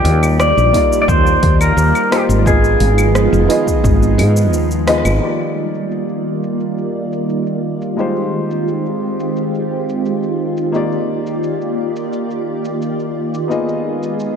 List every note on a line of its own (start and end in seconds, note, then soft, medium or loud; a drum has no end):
0.00 5.18 D#3 medium
0.00 2.44 G3 medium
0.00 0.69 A#3 medium
0.00 2.44 A#3 medium
0.00 0.70 D#4 medium
0.00 0.70 F4 medium
0.00 5.18 F4 medium
0.00 0.36 G4 loud
0.00 0.71 G4 medium
0.00 0.71 D5 medium
0.00 2.44 D5 medium
0.05 0.52 D#2 loud
0.05 open hi-hat medium
0.23 claves medium
0.23 shaker medium
0.40 1.00 D5 loud
0.40 cross-stick medium
0.40 shaker soft
0.57 0.71 A#1 medium
0.57 shaker soft
0.73 2.07 A#3 medium
0.73 2.08 D#4 medium
0.73 2.08 F4 medium
0.73 2.09 G4 medium
0.73 kick medium
0.73 open hi-hat medium
0.77 2.09 D5 medium
0.93 shaker medium
1.02 1.08 D5 medium
1.08 1.36 D#2 medium
1.08 1.63 C5 loud
1.08 kick loud
1.08 shaker medium
1.27 shaker soft
1.43 1.71 D#2 medium
1.43 kick loud
1.43 open hi-hat medium
1.61 2.13 A#4 medium
1.61 claves medium
1.61 shaker medium
1.77 1.92 D#2 medium
1.77 shaker medium
1.95 claves medium
1.95 shaker soft
2.11 2.42 A#3 medium
2.11 2.42 D#4 medium
2.11 2.42 F4 medium
2.11 2.43 G4 medium
2.11 2.22 G4 medium
2.11 2.43 C5 medium
2.11 cross-stick medium
2.11 open hi-hat medium
2.29 2.76 G#1 medium
2.29 shaker medium
2.44 5.20 F3 medium
2.44 5.20 G#3 medium
2.44 3.45 B3 medium
2.44 5.20 B3 medium
2.44 3.45 D#4 medium
2.44 3.46 F4 medium
2.44 4.50 G#4 medium
2.44 3.46 G#4 medium
2.44 3.47 D#5 medium
2.44 kick loud
2.44 shaker medium
2.64 shaker soft
2.80 3.27 G#1 medium
2.80 open hi-hat medium
2.98 claves medium
2.98 shaker medium
3.15 cross-stick medium
3.15 shaker medium
3.33 3.46 F1 medium
3.33 shaker soft
3.48 4.83 B3 medium
3.48 4.83 D#4 medium
3.48 4.84 F4 medium
3.48 4.84 G#4 medium
3.48 4.85 D#5 loud
3.48 open hi-hat loud
3.67 kick medium
3.67 shaker medium
3.84 4.20 G#1 medium
3.84 kick loud
3.84 shaker medium
4.03 shaker soft
4.18 4.53 G#2 medium
4.18 open hi-hat medium
4.18 claves medium
4.37 shaker medium
4.53 5.06 D#2 medium
4.53 shaker medium
4.71 shaker soft
4.87 5.18 B3 medium
4.87 5.18 D#4 medium
4.87 5.18 F4 medium
4.87 5.19 G#4 medium
4.87 5.19 D#5 loud
4.87 cross-stick medium
4.87 open hi-hat medium
5.05 5.19 G#1 medium
5.05 claves medium
5.05 shaker medium
5.20 14.36 D#3 medium
5.20 7.95 G3 medium
5.20 7.93 A#3 medium
5.20 7.96 A#3 medium
5.20 7.94 D#4 medium
5.20 7.94 F4 medium
5.20 14.36 F4 medium
5.20 7.95 G4 medium
5.20 7.95 D5 medium
5.20 shaker soft
5.40 shaker soft
5.75 shaker medium
5.91 shaker soft
6.09 shaker soft
6.43 shaker medium
6.60 shaker soft
6.78 shaker soft
7.12 shaker medium
7.29 shaker soft
7.47 shaker soft
7.82 shaker medium
7.97 10.69 G#3 medium
7.97 10.72 G#3 medium
7.97 10.72 C4 medium
7.97 10.70 D#4 medium
7.97 10.70 F4 medium
7.97 10.72 G4 medium
7.97 10.71 G4 medium
7.97 10.71 C5 medium
7.97 shaker soft
8.16 shaker soft
8.51 shaker medium
8.68 shaker medium
8.86 shaker soft
9.20 shaker medium
9.37 shaker soft
9.55 shaker soft
9.89 shaker medium
10.06 shaker medium
10.23 shaker soft
10.57 shaker medium
10.72 13.45 A#3 medium
10.72 13.47 A#3 medium
10.72 13.45 D#4 medium
10.72 13.46 F4 medium
10.72 13.47 G4 medium
10.72 13.46 G4 medium
10.72 13.47 D5 medium
10.72 shaker medium
10.92 shaker soft
11.26 shaker medium
11.44 shaker medium
11.62 shaker soft
11.96 shaker medium
12.13 shaker medium
12.31 shaker soft
12.65 shaker medium
12.82 shaker medium
13.00 shaker soft
13.34 shaker medium
13.48 14.36 G#3 medium
13.48 14.36 B3 medium
13.48 14.36 D#4 medium
13.48 14.36 F4 medium
13.48 14.36 G#4 medium
13.48 shaker medium
13.52 14.36 D#5 medium
13.69 shaker soft
14.03 shaker medium
14.20 shaker medium